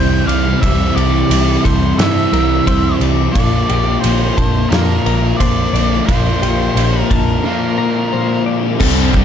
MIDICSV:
0, 0, Header, 1, 7, 480
1, 0, Start_track
1, 0, Tempo, 681818
1, 433, Time_signature, 4, 2, 24, 8
1, 6509, End_track
2, 0, Start_track
2, 0, Title_t, "Lead electric guitar"
2, 0, Program_c, 0, 29
2, 0, Note_on_c, 0, 79, 99
2, 188, Note_off_c, 0, 79, 0
2, 191, Note_on_c, 0, 77, 101
2, 430, Note_off_c, 0, 77, 0
2, 432, Note_on_c, 0, 76, 102
2, 668, Note_on_c, 0, 74, 89
2, 680, Note_off_c, 0, 76, 0
2, 1156, Note_off_c, 0, 74, 0
2, 1159, Note_on_c, 0, 72, 84
2, 1396, Note_on_c, 0, 76, 88
2, 1404, Note_off_c, 0, 72, 0
2, 2088, Note_off_c, 0, 76, 0
2, 2337, Note_on_c, 0, 74, 111
2, 2815, Note_off_c, 0, 74, 0
2, 2818, Note_on_c, 0, 72, 86
2, 3305, Note_on_c, 0, 70, 93
2, 3322, Note_off_c, 0, 72, 0
2, 3778, Note_on_c, 0, 74, 93
2, 3805, Note_off_c, 0, 70, 0
2, 4267, Note_off_c, 0, 74, 0
2, 4270, Note_on_c, 0, 72, 92
2, 4939, Note_off_c, 0, 72, 0
2, 4939, Note_on_c, 0, 70, 92
2, 5242, Note_off_c, 0, 70, 0
2, 5242, Note_on_c, 0, 70, 77
2, 5928, Note_off_c, 0, 70, 0
2, 6509, End_track
3, 0, Start_track
3, 0, Title_t, "Clean electric guitar"
3, 0, Program_c, 1, 27
3, 0, Note_on_c, 1, 72, 78
3, 192, Note_off_c, 1, 72, 0
3, 195, Note_on_c, 1, 74, 76
3, 677, Note_on_c, 1, 67, 78
3, 1154, Note_off_c, 1, 67, 0
3, 1157, Note_on_c, 1, 69, 77
3, 1636, Note_off_c, 1, 69, 0
3, 1640, Note_on_c, 1, 70, 76
3, 1877, Note_off_c, 1, 70, 0
3, 1881, Note_off_c, 1, 74, 0
3, 1883, Note_on_c, 1, 72, 82
3, 2119, Note_off_c, 1, 72, 0
3, 2125, Note_on_c, 1, 74, 76
3, 2602, Note_on_c, 1, 67, 71
3, 3076, Note_off_c, 1, 67, 0
3, 3079, Note_on_c, 1, 81, 77
3, 3557, Note_off_c, 1, 81, 0
3, 3563, Note_on_c, 1, 70, 77
3, 3799, Note_off_c, 1, 70, 0
3, 3802, Note_on_c, 1, 72, 74
3, 3823, Note_off_c, 1, 74, 0
3, 4039, Note_off_c, 1, 72, 0
3, 4039, Note_on_c, 1, 74, 75
3, 4522, Note_on_c, 1, 67, 74
3, 4998, Note_off_c, 1, 67, 0
3, 5000, Note_on_c, 1, 81, 80
3, 5476, Note_on_c, 1, 70, 71
3, 5477, Note_off_c, 1, 81, 0
3, 5715, Note_off_c, 1, 70, 0
3, 5720, Note_off_c, 1, 74, 0
3, 5723, Note_on_c, 1, 72, 78
3, 5953, Note_off_c, 1, 72, 0
3, 5956, Note_on_c, 1, 74, 76
3, 6193, Note_off_c, 1, 74, 0
3, 6194, Note_on_c, 1, 69, 86
3, 6509, Note_off_c, 1, 69, 0
3, 6509, End_track
4, 0, Start_track
4, 0, Title_t, "Overdriven electric guitar"
4, 0, Program_c, 2, 29
4, 0, Note_on_c, 2, 48, 76
4, 0, Note_on_c, 2, 52, 76
4, 0, Note_on_c, 2, 55, 79
4, 0, Note_on_c, 2, 60, 86
4, 0, Note_on_c, 2, 64, 85
4, 418, Note_off_c, 2, 48, 0
4, 422, Note_off_c, 2, 52, 0
4, 424, Note_off_c, 2, 55, 0
4, 424, Note_off_c, 2, 60, 0
4, 426, Note_on_c, 2, 48, 74
4, 428, Note_off_c, 2, 64, 0
4, 429, Note_on_c, 2, 52, 85
4, 435, Note_on_c, 2, 55, 89
4, 441, Note_on_c, 2, 60, 81
4, 443, Note_on_c, 2, 64, 82
4, 1376, Note_off_c, 2, 48, 0
4, 1378, Note_off_c, 2, 52, 0
4, 1381, Note_off_c, 2, 55, 0
4, 1383, Note_off_c, 2, 60, 0
4, 1384, Note_off_c, 2, 64, 0
4, 1393, Note_on_c, 2, 48, 72
4, 1399, Note_on_c, 2, 52, 84
4, 1409, Note_on_c, 2, 55, 81
4, 1410, Note_on_c, 2, 60, 96
4, 1414, Note_on_c, 2, 64, 85
4, 2340, Note_off_c, 2, 48, 0
4, 2343, Note_off_c, 2, 52, 0
4, 2346, Note_on_c, 2, 46, 77
4, 2348, Note_off_c, 2, 55, 0
4, 2348, Note_off_c, 2, 60, 0
4, 2351, Note_off_c, 2, 64, 0
4, 2355, Note_on_c, 2, 50, 81
4, 2358, Note_on_c, 2, 58, 78
4, 2365, Note_on_c, 2, 62, 79
4, 2366, Note_on_c, 2, 65, 90
4, 3301, Note_off_c, 2, 50, 0
4, 3309, Note_off_c, 2, 46, 0
4, 3312, Note_on_c, 2, 46, 74
4, 3316, Note_on_c, 2, 50, 83
4, 3319, Note_off_c, 2, 58, 0
4, 3321, Note_on_c, 2, 58, 75
4, 3326, Note_off_c, 2, 62, 0
4, 3329, Note_off_c, 2, 65, 0
4, 3329, Note_on_c, 2, 62, 79
4, 3332, Note_on_c, 2, 65, 78
4, 4259, Note_off_c, 2, 46, 0
4, 4262, Note_off_c, 2, 50, 0
4, 4264, Note_off_c, 2, 58, 0
4, 4269, Note_off_c, 2, 65, 0
4, 4277, Note_on_c, 2, 46, 75
4, 4283, Note_on_c, 2, 50, 87
4, 4285, Note_off_c, 2, 62, 0
4, 4287, Note_on_c, 2, 58, 83
4, 4288, Note_on_c, 2, 62, 90
4, 4299, Note_on_c, 2, 65, 85
4, 5221, Note_off_c, 2, 46, 0
4, 5224, Note_off_c, 2, 50, 0
4, 5226, Note_off_c, 2, 58, 0
4, 5226, Note_off_c, 2, 62, 0
4, 5232, Note_off_c, 2, 65, 0
4, 5233, Note_on_c, 2, 46, 70
4, 5238, Note_on_c, 2, 50, 67
4, 5245, Note_on_c, 2, 58, 84
4, 5251, Note_on_c, 2, 62, 89
4, 5252, Note_on_c, 2, 65, 86
4, 6176, Note_off_c, 2, 46, 0
4, 6179, Note_off_c, 2, 50, 0
4, 6182, Note_off_c, 2, 58, 0
4, 6185, Note_off_c, 2, 62, 0
4, 6186, Note_off_c, 2, 65, 0
4, 6190, Note_on_c, 2, 48, 86
4, 6195, Note_on_c, 2, 55, 86
4, 6204, Note_on_c, 2, 60, 85
4, 6207, Note_on_c, 2, 62, 94
4, 6211, Note_on_c, 2, 67, 94
4, 6509, Note_off_c, 2, 48, 0
4, 6509, Note_off_c, 2, 55, 0
4, 6509, Note_off_c, 2, 60, 0
4, 6509, Note_off_c, 2, 62, 0
4, 6509, Note_off_c, 2, 67, 0
4, 6509, End_track
5, 0, Start_track
5, 0, Title_t, "Distorted electric guitar"
5, 0, Program_c, 3, 30
5, 0, Note_on_c, 3, 48, 78
5, 0, Note_on_c, 3, 55, 68
5, 0, Note_on_c, 3, 60, 75
5, 422, Note_off_c, 3, 48, 0
5, 430, Note_on_c, 3, 48, 81
5, 435, Note_off_c, 3, 55, 0
5, 442, Note_off_c, 3, 60, 0
5, 443, Note_on_c, 3, 55, 92
5, 451, Note_on_c, 3, 60, 96
5, 907, Note_off_c, 3, 48, 0
5, 916, Note_on_c, 3, 48, 70
5, 924, Note_off_c, 3, 55, 0
5, 931, Note_off_c, 3, 60, 0
5, 932, Note_on_c, 3, 55, 74
5, 940, Note_on_c, 3, 60, 80
5, 1382, Note_off_c, 3, 48, 0
5, 1391, Note_on_c, 3, 48, 91
5, 1398, Note_off_c, 3, 55, 0
5, 1406, Note_on_c, 3, 55, 94
5, 1409, Note_off_c, 3, 60, 0
5, 1417, Note_on_c, 3, 60, 101
5, 1626, Note_off_c, 3, 60, 0
5, 1635, Note_on_c, 3, 60, 70
5, 1651, Note_off_c, 3, 55, 0
5, 1659, Note_on_c, 3, 55, 63
5, 1867, Note_off_c, 3, 48, 0
5, 1876, Note_on_c, 3, 48, 74
5, 1881, Note_off_c, 3, 55, 0
5, 1890, Note_on_c, 3, 55, 83
5, 1893, Note_off_c, 3, 60, 0
5, 1902, Note_on_c, 3, 60, 78
5, 2341, Note_off_c, 3, 48, 0
5, 2348, Note_off_c, 3, 55, 0
5, 2352, Note_on_c, 3, 46, 85
5, 2354, Note_off_c, 3, 60, 0
5, 2366, Note_on_c, 3, 53, 87
5, 2375, Note_on_c, 3, 58, 94
5, 2832, Note_off_c, 3, 46, 0
5, 2835, Note_on_c, 3, 46, 64
5, 2846, Note_off_c, 3, 53, 0
5, 2849, Note_on_c, 3, 53, 68
5, 2856, Note_off_c, 3, 58, 0
5, 2859, Note_on_c, 3, 58, 82
5, 3299, Note_off_c, 3, 46, 0
5, 3307, Note_on_c, 3, 46, 88
5, 3313, Note_off_c, 3, 53, 0
5, 3322, Note_off_c, 3, 58, 0
5, 3322, Note_on_c, 3, 53, 88
5, 3331, Note_on_c, 3, 58, 100
5, 3545, Note_off_c, 3, 58, 0
5, 3553, Note_on_c, 3, 58, 70
5, 3571, Note_off_c, 3, 53, 0
5, 3580, Note_on_c, 3, 53, 55
5, 3785, Note_off_c, 3, 46, 0
5, 3793, Note_on_c, 3, 46, 70
5, 3796, Note_off_c, 3, 53, 0
5, 3804, Note_on_c, 3, 53, 88
5, 3808, Note_off_c, 3, 58, 0
5, 3817, Note_on_c, 3, 58, 84
5, 4266, Note_off_c, 3, 46, 0
5, 4275, Note_on_c, 3, 46, 79
5, 4279, Note_off_c, 3, 53, 0
5, 4287, Note_on_c, 3, 53, 88
5, 4289, Note_off_c, 3, 58, 0
5, 4298, Note_on_c, 3, 58, 102
5, 4744, Note_off_c, 3, 46, 0
5, 4752, Note_on_c, 3, 46, 66
5, 4755, Note_off_c, 3, 53, 0
5, 4764, Note_on_c, 3, 53, 79
5, 4768, Note_off_c, 3, 58, 0
5, 4776, Note_on_c, 3, 58, 74
5, 5217, Note_off_c, 3, 46, 0
5, 5225, Note_on_c, 3, 46, 82
5, 5231, Note_off_c, 3, 53, 0
5, 5240, Note_on_c, 3, 53, 86
5, 5241, Note_off_c, 3, 58, 0
5, 5250, Note_on_c, 3, 58, 95
5, 5461, Note_off_c, 3, 58, 0
5, 5470, Note_on_c, 3, 58, 68
5, 5484, Note_off_c, 3, 53, 0
5, 5493, Note_on_c, 3, 53, 60
5, 5707, Note_off_c, 3, 46, 0
5, 5716, Note_off_c, 3, 53, 0
5, 5716, Note_on_c, 3, 46, 65
5, 5725, Note_on_c, 3, 53, 76
5, 5728, Note_off_c, 3, 58, 0
5, 5737, Note_on_c, 3, 58, 73
5, 6178, Note_off_c, 3, 46, 0
5, 6183, Note_off_c, 3, 53, 0
5, 6189, Note_off_c, 3, 58, 0
5, 6195, Note_on_c, 3, 48, 90
5, 6209, Note_on_c, 3, 55, 113
5, 6218, Note_on_c, 3, 60, 101
5, 6421, Note_off_c, 3, 60, 0
5, 6424, Note_on_c, 3, 60, 66
5, 6445, Note_off_c, 3, 55, 0
5, 6448, Note_on_c, 3, 55, 66
5, 6509, Note_off_c, 3, 48, 0
5, 6509, Note_off_c, 3, 55, 0
5, 6509, Note_off_c, 3, 60, 0
5, 6509, End_track
6, 0, Start_track
6, 0, Title_t, "Picked electric bass"
6, 0, Program_c, 4, 34
6, 0, Note_on_c, 4, 36, 90
6, 143, Note_off_c, 4, 36, 0
6, 190, Note_on_c, 4, 36, 79
6, 376, Note_off_c, 4, 36, 0
6, 445, Note_on_c, 4, 36, 92
6, 625, Note_off_c, 4, 36, 0
6, 676, Note_on_c, 4, 36, 85
6, 860, Note_off_c, 4, 36, 0
6, 912, Note_on_c, 4, 36, 86
6, 1098, Note_off_c, 4, 36, 0
6, 1166, Note_on_c, 4, 36, 77
6, 1346, Note_off_c, 4, 36, 0
6, 1399, Note_on_c, 4, 43, 86
6, 1582, Note_off_c, 4, 43, 0
6, 1638, Note_on_c, 4, 36, 94
6, 1822, Note_off_c, 4, 36, 0
6, 1881, Note_on_c, 4, 36, 87
6, 2063, Note_off_c, 4, 36, 0
6, 2116, Note_on_c, 4, 36, 88
6, 2301, Note_off_c, 4, 36, 0
6, 2362, Note_on_c, 4, 34, 95
6, 2544, Note_off_c, 4, 34, 0
6, 2602, Note_on_c, 4, 34, 84
6, 2784, Note_off_c, 4, 34, 0
6, 2846, Note_on_c, 4, 34, 88
6, 3027, Note_off_c, 4, 34, 0
6, 3084, Note_on_c, 4, 34, 87
6, 3266, Note_off_c, 4, 34, 0
6, 3319, Note_on_c, 4, 41, 88
6, 3503, Note_off_c, 4, 41, 0
6, 3559, Note_on_c, 4, 34, 87
6, 3742, Note_off_c, 4, 34, 0
6, 3804, Note_on_c, 4, 34, 91
6, 3985, Note_off_c, 4, 34, 0
6, 4035, Note_on_c, 4, 34, 89
6, 4220, Note_off_c, 4, 34, 0
6, 4285, Note_on_c, 4, 34, 94
6, 4466, Note_off_c, 4, 34, 0
6, 4515, Note_on_c, 4, 34, 76
6, 4700, Note_off_c, 4, 34, 0
6, 4754, Note_on_c, 4, 34, 87
6, 4939, Note_off_c, 4, 34, 0
6, 5007, Note_on_c, 4, 34, 88
6, 5187, Note_off_c, 4, 34, 0
6, 6199, Note_on_c, 4, 36, 94
6, 6509, Note_off_c, 4, 36, 0
6, 6509, End_track
7, 0, Start_track
7, 0, Title_t, "Drums"
7, 205, Note_on_c, 9, 51, 68
7, 275, Note_off_c, 9, 51, 0
7, 443, Note_on_c, 9, 36, 110
7, 445, Note_on_c, 9, 51, 95
7, 513, Note_off_c, 9, 36, 0
7, 515, Note_off_c, 9, 51, 0
7, 687, Note_on_c, 9, 51, 67
7, 757, Note_off_c, 9, 51, 0
7, 922, Note_on_c, 9, 51, 101
7, 993, Note_off_c, 9, 51, 0
7, 1163, Note_on_c, 9, 36, 82
7, 1166, Note_on_c, 9, 51, 75
7, 1233, Note_off_c, 9, 36, 0
7, 1237, Note_off_c, 9, 51, 0
7, 1402, Note_on_c, 9, 51, 92
7, 1408, Note_on_c, 9, 38, 108
7, 1472, Note_off_c, 9, 51, 0
7, 1478, Note_off_c, 9, 38, 0
7, 1643, Note_on_c, 9, 51, 62
7, 1713, Note_off_c, 9, 51, 0
7, 1882, Note_on_c, 9, 36, 91
7, 1882, Note_on_c, 9, 51, 97
7, 1952, Note_off_c, 9, 36, 0
7, 1953, Note_off_c, 9, 51, 0
7, 2120, Note_on_c, 9, 51, 62
7, 2190, Note_off_c, 9, 51, 0
7, 2361, Note_on_c, 9, 51, 93
7, 2362, Note_on_c, 9, 36, 114
7, 2432, Note_off_c, 9, 51, 0
7, 2433, Note_off_c, 9, 36, 0
7, 2601, Note_on_c, 9, 51, 65
7, 2671, Note_off_c, 9, 51, 0
7, 2842, Note_on_c, 9, 51, 88
7, 2912, Note_off_c, 9, 51, 0
7, 3082, Note_on_c, 9, 36, 89
7, 3083, Note_on_c, 9, 51, 61
7, 3153, Note_off_c, 9, 36, 0
7, 3153, Note_off_c, 9, 51, 0
7, 3323, Note_on_c, 9, 51, 80
7, 3328, Note_on_c, 9, 38, 114
7, 3393, Note_off_c, 9, 51, 0
7, 3399, Note_off_c, 9, 38, 0
7, 3564, Note_on_c, 9, 51, 61
7, 3634, Note_off_c, 9, 51, 0
7, 3804, Note_on_c, 9, 36, 92
7, 3805, Note_on_c, 9, 51, 97
7, 3875, Note_off_c, 9, 36, 0
7, 3875, Note_off_c, 9, 51, 0
7, 4051, Note_on_c, 9, 51, 70
7, 4122, Note_off_c, 9, 51, 0
7, 4285, Note_on_c, 9, 36, 111
7, 4285, Note_on_c, 9, 51, 92
7, 4355, Note_off_c, 9, 36, 0
7, 4356, Note_off_c, 9, 51, 0
7, 4526, Note_on_c, 9, 51, 65
7, 4597, Note_off_c, 9, 51, 0
7, 4766, Note_on_c, 9, 51, 84
7, 4837, Note_off_c, 9, 51, 0
7, 5004, Note_on_c, 9, 36, 83
7, 5005, Note_on_c, 9, 51, 67
7, 5075, Note_off_c, 9, 36, 0
7, 5075, Note_off_c, 9, 51, 0
7, 6193, Note_on_c, 9, 54, 82
7, 6198, Note_on_c, 9, 49, 127
7, 6199, Note_on_c, 9, 36, 112
7, 6264, Note_off_c, 9, 54, 0
7, 6269, Note_off_c, 9, 49, 0
7, 6270, Note_off_c, 9, 36, 0
7, 6429, Note_on_c, 9, 54, 30
7, 6437, Note_on_c, 9, 36, 85
7, 6500, Note_off_c, 9, 54, 0
7, 6507, Note_off_c, 9, 36, 0
7, 6509, End_track
0, 0, End_of_file